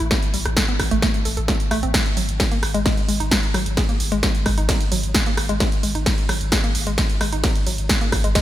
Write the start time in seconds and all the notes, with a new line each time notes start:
0.00 A1
0.11 A3, kick, snare, closed hi-hat
0.23 closed hi-hat
0.34 A1 G3, open hi-hat
0.45 A1, cross-stick, closed hi-hat
0.57 A4, kick, snare, closed hi-hat
0.68 B3, closed hi-hat
0.80 A1, kick, cross-stick, open hi-hat
0.91 A1 A3, closed hi-hat
1.02 A3, kick, snare, closed hi-hat
1.14 closed hi-hat
1.25 A1 A4, open hi-hat
1.37 A1 A4, closed hi-hat
1.48 A3, kick, snare, closed hi-hat
1.60 closed hi-hat
1.71 A1 A3, cross-stick, open hi-hat
1.83 A1 C4, closed hi-hat
1.94 G#3, kick, snare, closed hi-hat, ride
2.06 closed hi-hat
2.17 G#1 F#3, open hi-hat
2.29 G#1, closed hi-hat
2.40 G#4, kick, snare, closed hi-hat, ride
2.52 A#3, closed hi-hat
2.63 G#1, cross-stick, open hi-hat
2.74 G#1 G#3, closed hi-hat
2.86 G#3, kick, snare, closed hi-hat, ride
2.97 closed hi-hat
3.08 G#1 G#3, open hi-hat
3.20 G#1 D#4, closed hi-hat
3.31 G#3, kick, snare, closed hi-hat, ride
3.43 closed hi-hat
3.54 G#1 F#3, cross-stick, open hi-hat
3.66 G#1, closed hi-hat
3.77 G#4, kick, snare, closed hi-hat, ride
3.89 A#3, closed hi-hat
4.00 G#1, open hi-hat
4.12 G#1 G#3, closed hi-hat
4.23 G#3, kick, snare, closed hi-hat, ride
4.35 closed hi-hat
4.46 G#1 G#3, kick, cross-stick, open hi-hat
4.58 G#1 D#4, closed hi-hat
4.69 G#3, kick, snare, closed hi-hat, ride
4.81 closed hi-hat
4.92 G#1 F#3, open hi-hat
5.03 G#1, closed hi-hat
5.15 G#4, kick, snare, closed hi-hat, ride
5.26 A#3, closed hi-hat
5.37 G#1, cross-stick, open hi-hat
5.49 G#1 G#3, closed hi-hat
5.60 G#3, kick, snare, closed hi-hat, ride
5.72 closed hi-hat
5.83 G#1 G#3, open hi-hat
5.95 G#1 D#4, closed hi-hat
6.06 G#3, kick, snare, closed hi-hat, ride
6.18 closed hi-hat
6.29 G#1 F#3, cross-stick, open hi-hat
6.41 G#1, closed hi-hat
6.52 G#4, kick, snare, closed hi-hat, ride
6.64 A#3, closed hi-hat
6.75 G#1, open hi-hat
6.87 G#1 G#3, closed hi-hat
6.98 G#3, kick, snare, closed hi-hat, ride
7.10 closed hi-hat
7.21 G#1 G#3, cross-stick, open hi-hat
7.32 G#1 D#4, closed hi-hat
7.44 G#3, kick, snare, closed hi-hat, ride
7.55 closed hi-hat
7.67 G#1 F#3, open hi-hat
7.78 G#1, closed hi-hat
7.89 G#4, kick, snare, closed hi-hat, ride
8.01 A#3, closed hi-hat
8.12 G#1, kick, cross-stick, open hi-hat
8.24 G#1 G#3, closed hi-hat
8.35 G#3, kick, snare, closed hi-hat, ride